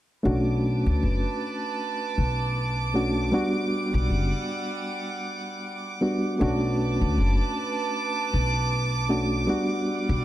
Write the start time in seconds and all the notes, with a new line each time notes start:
0.23 B1 A3 C#4 D4 F#4 B4 A5 D6
0.86 D2
1.03 F#1
2.18 B1
2.94 A3 C#4 D4 F#4
3.32 G3 B3 D4 F#4 F#5
3.94 B1
4.10 F#1
6.01 G3 B3 D4 F#4
6.39 B1 A3 C#4 D4 F#4 B4 A5 D6
7.01 D2
7.18 F#1
8.34 B1
9.09 A3 C#4 D4 F#4
9.47 G3 B3 D4 F#4 F#5
10.09 B1